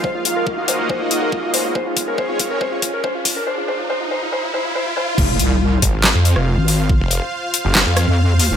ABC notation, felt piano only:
X:1
M:4/4
L:1/16
Q:1/4=140
K:Fphr
V:1 name="Felt piano"
c F F B F F c F c F F B F F c F | c F F B c F F B c F F B c F F B | c F c F c F c F c F c F c F c F | z16 |
z16 |]